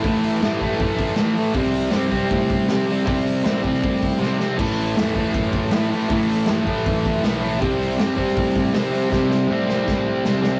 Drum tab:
CC |----------------|----------------|----------------|x---------------|
HH |o-o-o-o-o-o-o-o-|o-o-o-o-o-o-o-o-|o-o-o-o-o-o-----|--o-o-o-o-o-o-o-|
SD |----o-------o---|-o--o-------o---|-o--o--o----o-o-|----o-------o---|
BD |o-----o-o-o-----|o-----o-o-o-----|o-----o-o-o-----|o-----o-o-o-----|

CC |----------------|----------------|----------------|
HH |o-o-o-o-o-o-o-o-|o-o-o-o-o-o-o-o-|----------------|
SD |----o--o----o---|----o--o----o---|o-o---o-o---o-o-|
BD |o-----o-o-o-----|o-----o-o-o-----|o-------o-------|